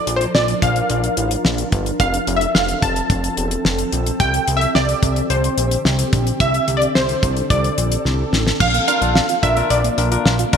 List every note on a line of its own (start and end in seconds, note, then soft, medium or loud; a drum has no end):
0.00 4.16 F3 medium
0.00 1.98 D4 medium
0.00 1.98 A#4 medium
0.00 0.14 D5 loud
0.07 0.26 A#1 medium
0.07 closed hi-hat medium
0.16 0.25 C5 medium
0.21 closed hi-hat soft
0.35 0.54 A#1 loud
0.35 0.60 D5 loud
0.35 snare loud
0.48 closed hi-hat soft
0.62 0.81 A#1 loud
0.62 1.68 F5 loud
0.62 kick medium
0.62 closed hi-hat medium
0.76 closed hi-hat soft
0.90 1.09 A#1 loud
0.90 closed hi-hat medium
1.04 closed hi-hat soft
1.17 1.36 A1 medium
1.17 closed hi-hat medium
1.31 closed hi-hat medium
1.45 1.64 A#1 medium
1.45 snare loud
1.58 closed hi-hat medium
1.72 1.92 G1 medium
1.72 kick medium
1.72 closed hi-hat medium
1.86 closed hi-hat soft
2.00 2.19 F1 loud
2.00 8.56 C4 medium
2.00 4.18 A4 medium
2.00 2.38 F5 loud
2.00 kick loud
2.00 closed hi-hat medium
2.14 closed hi-hat medium
2.27 2.47 F1 loud
2.27 closed hi-hat medium
2.36 2.55 E5 medium
2.41 closed hi-hat soft
2.55 2.74 F1 medium
2.55 2.83 F5 medium
2.55 snare loud
2.68 closed hi-hat soft
2.82 3.02 F1 medium
2.82 3.88 A5 loud
2.82 kick medium
2.82 closed hi-hat medium
2.96 closed hi-hat soft
3.10 3.29 F1 loud
3.10 kick medium
3.10 closed hi-hat medium
3.24 closed hi-hat soft
3.37 3.57 E1 medium
3.37 closed hi-hat medium
3.51 closed hi-hat medium
3.65 3.84 F1 loud
3.65 snare loud
3.78 closed hi-hat soft
3.92 4.12 A#1 medium
3.92 closed hi-hat medium
4.06 closed hi-hat soft
4.20 4.39 C2 loud
4.20 8.56 D3 medium
4.20 6.38 G4 medium
4.20 4.58 G5 loud
4.20 kick loud
4.20 closed hi-hat medium
4.34 closed hi-hat medium
4.47 4.67 C2 loud
4.47 closed hi-hat medium
4.57 4.76 E5 medium
4.61 closed hi-hat soft
4.75 4.94 C2 loud
4.75 5.32 D5 medium
4.75 snare loud
4.89 closed hi-hat soft
5.03 5.22 C2 loud
5.03 kick medium
5.03 closed hi-hat medium
5.16 closed hi-hat soft
5.30 5.49 C2 loud
5.30 6.09 C5 medium
5.30 closed hi-hat medium
5.44 closed hi-hat soft
5.58 5.77 A#1 medium
5.58 closed hi-hat medium
5.71 closed hi-hat medium
5.85 6.04 C2 medium
5.85 snare loud
5.99 closed hi-hat medium
6.13 6.32 A#1 medium
6.13 kick medium
6.13 closed hi-hat medium
6.27 closed hi-hat soft
6.40 6.59 C2 loud
6.40 8.58 A4 medium
6.40 6.74 E5 loud
6.40 kick loud
6.40 closed hi-hat medium
6.54 closed hi-hat medium
6.68 6.87 C2 loud
6.68 closed hi-hat medium
6.77 6.94 D5 medium
6.82 closed hi-hat soft
6.95 7.14 C2 medium
6.95 7.52 C5 medium
6.95 snare loud
7.09 closed hi-hat soft
7.23 7.42 C2 loud
7.23 kick medium
7.23 closed hi-hat medium
7.37 closed hi-hat soft
7.50 7.70 C2 loud
7.50 8.01 D5 medium
7.50 kick medium
7.50 closed hi-hat medium
7.64 closed hi-hat soft
7.78 7.97 A#1 loud
7.78 closed hi-hat medium
7.92 closed hi-hat medium
8.05 8.25 C2 loud
8.05 snare soft
8.33 8.52 A1 medium
8.33 snare medium
8.47 snare medium
8.60 8.80 A#1 loud
8.60 10.57 D3 medium
8.60 8.72 F3 medium
8.60 10.57 A#3 medium
8.60 10.57 F4 medium
8.60 8.86 F5 loud
8.60 kick loud
8.60 crash medium
8.74 8.85 A#3 medium
8.74 closed hi-hat medium
8.88 8.99 D4 medium
8.88 8.99 F4 medium
8.88 8.99 A#4 medium
8.88 9.45 F5 loud
8.88 closed hi-hat medium
9.02 9.21 A#1 loud
9.02 9.25 D4 medium
9.02 9.25 F4 medium
9.02 9.25 A4 medium
9.02 closed hi-hat soft
9.15 9.27 F5 medium
9.15 snare loud
9.29 9.40 F4 medium
9.29 closed hi-hat medium
9.43 9.62 A#1 medium
9.43 9.54 D4 medium
9.43 9.54 F4 medium
9.43 9.54 A#4 medium
9.43 9.71 E5 loud
9.43 kick medium
9.43 closed hi-hat medium
9.57 9.68 A#3 medium
9.57 9.80 D4 medium
9.57 9.80 F4 medium
9.57 9.80 A#4 medium
9.57 closed hi-hat soft
9.70 9.90 A#1 loud
9.70 9.82 F3 medium
9.70 10.49 D5 medium
9.70 closed hi-hat medium
9.84 9.96 A#3 medium
9.84 closed hi-hat soft
9.98 10.17 A#1 loud
9.98 10.10 D4 medium
9.98 10.09 D4 medium
9.98 10.10 F4 medium
9.98 10.10 A#4 medium
9.98 closed hi-hat medium
10.12 10.35 D4 medium
10.12 10.35 F4 medium
10.12 10.23 F4 medium
10.12 10.35 A#4 medium
10.12 closed hi-hat medium
10.25 10.45 A#1 loud
10.25 10.37 F5 medium
10.25 snare loud
10.39 10.51 F4 medium
10.39 closed hi-hat medium
10.53 10.57 G1 medium
10.53 10.57 D4 medium
10.53 10.57 F4 medium
10.53 10.57 A#4 loud
10.53 kick loud
10.53 closed hi-hat medium